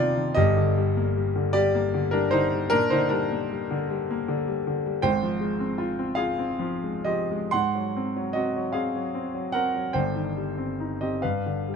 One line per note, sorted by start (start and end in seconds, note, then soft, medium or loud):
0.00 0.31 D#2 medium
0.00 0.39 C3 medium
0.00 0.16 D#3 medium
0.00 0.39 G3 medium
0.00 0.39 C4 medium
0.00 0.39 D4 medium
0.00 0.39 D#4 medium
0.00 0.33 F4 medium
0.00 0.38 G#4 medium
0.00 0.39 A#4 medium
0.00 0.39 C5 loud
0.00 0.35 D5 loud
0.16 0.36 D#3 soft
0.35 2.70 G1 medium
0.35 2.70 G2 medium
0.35 1.51 G4 medium
0.35 1.54 D#5 loud
0.57 0.88 D3 medium
0.78 1.08 G3 medium
0.97 1.28 A#3 medium
1.16 1.47 G3 medium
1.36 1.67 D3 soft
1.53 1.87 G3 medium
1.53 2.09 G4 medium
1.53 2.13 D5 loud
1.75 2.06 A#3 medium
1.94 2.26 D3 medium
2.11 2.46 G3 medium
2.11 2.32 D4 medium
2.11 2.32 A#4 medium
2.31 2.66 D3 medium
2.31 2.70 D#4 medium
2.31 2.72 C5 loud
2.53 2.73 G3 medium
2.70 4.98 A#2 medium
2.70 2.90 D4 medium
2.70 2.91 A#4 loud
2.90 3.24 D3 medium
2.90 3.11 D#4 medium
2.90 3.11 C5 medium
3.09 3.43 G3 medium
3.09 3.47 D4 medium
3.09 3.50 A#4 medium
3.31 3.63 A#3 medium
3.51 3.82 G3 medium
3.71 4.02 D3 medium
3.90 4.21 G3 medium
4.11 4.40 A#3 medium
4.28 4.58 D3 medium
4.48 4.77 G3 medium
4.67 4.96 D3 soft
4.86 5.04 G3 medium
5.02 7.47 G#1 medium
5.02 7.48 G#2 medium
5.02 6.12 C5 medium
5.02 6.16 G5 loud
5.23 5.51 F3 medium
5.40 5.69 G#3 medium
5.60 5.89 C4 medium
5.78 6.09 F4 medium
5.99 6.30 C4 soft
6.15 6.51 F4 medium
6.15 7.01 G#4 medium
6.15 7.05 F5 medium
6.39 6.74 C4 medium
6.59 6.96 F3 medium
6.83 7.20 G#3 soft
7.05 7.43 F3 soft
7.05 7.48 G4 medium
7.05 7.51 D#5 medium
7.31 7.52 G#3 medium
7.51 9.91 G#2 medium
7.51 8.32 F#5 medium
7.51 8.35 C6 loud
7.75 8.08 F#3 soft
7.96 8.28 C4 soft
8.16 8.48 F#3 soft
8.33 8.67 C4 soft
8.33 8.71 F#4 medium
8.33 8.73 D#5 medium
8.56 8.86 F#3 soft
8.73 9.06 C4 soft
8.73 9.49 G#4 medium
8.73 9.52 F5 medium
8.96 9.26 F#3 medium
9.15 9.46 C4 soft
9.35 9.66 F#3 soft
9.52 9.87 C4 soft
9.52 9.91 A#4 medium
9.52 9.94 F#5 medium
9.74 9.94 F#3 soft
9.93 11.18 G1 medium
9.93 11.19 G2 medium
9.93 10.96 C5 medium
9.93 11.00 G5 medium
10.15 10.48 D#3 soft
10.37 10.70 G3 soft
10.58 10.92 C4 soft
10.80 11.14 D#4 soft
11.01 11.23 C4 soft
11.01 11.21 G4 soft
11.01 11.22 D#5 medium
11.22 11.76 G2 soft
11.22 11.69 B4 medium
11.22 11.72 F5 medium
11.46 11.76 D3 soft
11.68 11.76 G3 soft